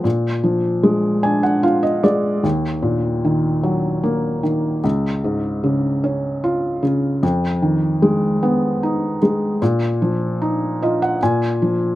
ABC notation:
X:1
M:3/4
L:1/16
Q:1/4=75
K:Bbphr
V:1 name="Felt piano"
z6 a g f e =d2 | z12 | z12 | z12 |
z6 e g a4 |]
V:2 name="Felt piano" clef=bass
B,,2 F,2 A,2 =D2 F2 A,2 | E,,2 B,,2 E,2 G,2 B,2 E,2 | D,,2 A,,2 D,2 D2 F2 D,2 | F,,2 E,2 A,2 C2 E2 A,2 |
B,,2 F,2 E2 F2 B,,2 F,2 |]